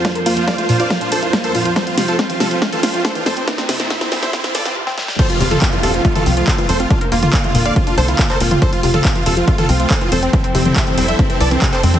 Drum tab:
CC |----------------|----------------|----------------|x---------------|
HH |xxoxxxoxxxoxxxox|xxoxxxoxxxoxxxox|xxoxxxoxxxox----|xxoxxxoxxxoxxxox|
CP |----------------|----------------|----------------|----x-------x---|
SD |o---o---o---o---|o-o-o-o-o-o-o-o-|oooooooooooo-ooo|----------------|
T2 |----------------|----------------|----------------|---o-----o------|
BD |o---o---o---o---|o---o---o---o---|o---o---o-------|o---o---o---o---|

CC |----------------|----------------|----------------|
HH |xxoxxxoxxxoxxxox|xxoxxxoxxxoxxxox|xxoxxxoxxxoxxxox|
CP |----x-------xx--|----x-------x---|----x-------xx--|
SD |----------------|----------------|----------------|
T2 |---o-o---------o|---o-----o------|---o-o---------o|
BD |o---o---o---o---|o---o---o---o---|o---o---o---o---|